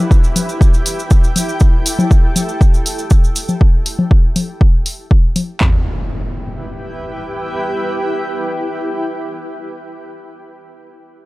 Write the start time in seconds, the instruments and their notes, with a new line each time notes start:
Already playing: ambient pad E4 G4 B4 G5, downlifter
0.11 kick, cabasa
0.24 cabasa
0.36 open hi-hat, low conga, cabasa
0.49 cabasa
0.61 kick, cabasa
0.74 cabasa
0.86 ambient pad A4, open hi-hat, cabasa
0.99 cabasa
1.11 kick, cabasa
1.24 cabasa
1.36 open hi-hat, low conga, cabasa
1.49 cabasa
1.60 kick, cabasa
1.86 open hi-hat, cabasa
1.99 low conga, cabasa
2.11 kick, cabasa
2.36 open hi-hat, low conga, cabasa
2.49 cabasa
2.61 kick, cabasa
2.74 cabasa
2.86 open hi-hat, cabasa
2.99 cabasa
3.10 kick, cabasa
3.24 cabasa
3.36 open hi-hat, cabasa
3.49 low conga, cabasa
3.61 kick
3.86 open hi-hat
3.99 low conga
4.11 kick
4.36 open hi-hat, low conga
4.61 kick
4.86 open hi-hat
5.11 kick
5.36 open hi-hat, low conga
5.61 ambient pad E4, kick, clap, floor tom, impact
5.69 ambient pad G4
5.76 ambient pad B4
5.84 ambient pad G5